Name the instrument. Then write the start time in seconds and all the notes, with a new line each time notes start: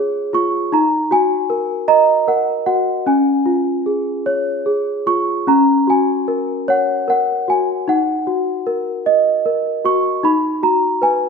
celesta
Already playing: F4 G#4 C#5 F5
0.33 F4 C#6
0.72 D#4 A#5
1.11 F#4 G#5
1.50 A#4
1.88 D#5 A#5
2.28 A#4 F#5
2.66 F#4 F#5
3.06 C#4 G#5
3.46 F4
3.86 G#4
4.26 C#5
4.66 G#4
5.06 F4 C#6
5.47 C#4 A#5
5.87 F#4 G#5
6.28 A#4
6.68 C#5 F#5
7.08 A#4 F#5
7.48 F#4 G#5
7.88 D#4 F#5
8.27 F#4
8.67 A#4
9.06 D#5
9.46 A#4
9.85 F#4 C#6
10.23 D#4 B5
10.63 F#4 A#5
11.02 B4 G#5